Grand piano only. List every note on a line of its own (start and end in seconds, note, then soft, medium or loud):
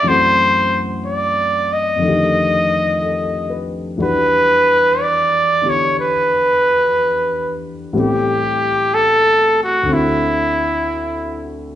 0.03 2.00 F#2 medium
0.03 2.01 E3 soft
0.03 2.00 A3 soft
0.03 2.02 C4 soft
0.08 2.03 F#4 medium
1.96 3.97 F2 soft
1.96 3.99 D#3 soft
2.02 4.01 D3 soft
2.02 4.00 A3 soft
2.07 4.03 G4 soft
3.01 3.81 A4 soft
3.50 4.20 B4 soft
3.97 7.92 E2 soft
3.97 7.92 E3 soft
3.97 7.93 G3 soft
3.97 7.93 D4 soft
3.97 7.93 F#4 soft
5.62 7.92 D3 soft
5.62 7.92 B3 soft
5.62 7.93 E4 soft
5.62 7.94 G4 soft
7.93 9.88 A2 medium
7.93 9.88 E3 soft
7.93 9.89 G3 medium
7.93 9.88 B3 soft
7.93 9.86 C4 soft
9.83 11.75 D2 medium
9.83 11.75 D3 soft
9.88 11.75 C4 medium
9.88 11.75 E4 soft
9.93 11.75 F#4 medium